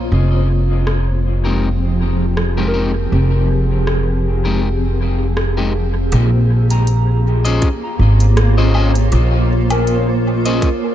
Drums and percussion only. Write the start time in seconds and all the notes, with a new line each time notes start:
0.87 cross-stick
2.37 cross-stick
3.87 cross-stick
5.37 cross-stick
6.12 closed hi-hat
6.70 closed hi-hat
6.87 closed hi-hat
7.45 closed hi-hat
7.62 kick, closed hi-hat
8.20 closed hi-hat
8.37 cross-stick, closed hi-hat
8.75 low woodblock
8.95 closed hi-hat
9.12 closed hi-hat
9.70 closed hi-hat, low woodblock
9.87 closed hi-hat
10.46 closed hi-hat
10.62 kick, closed hi-hat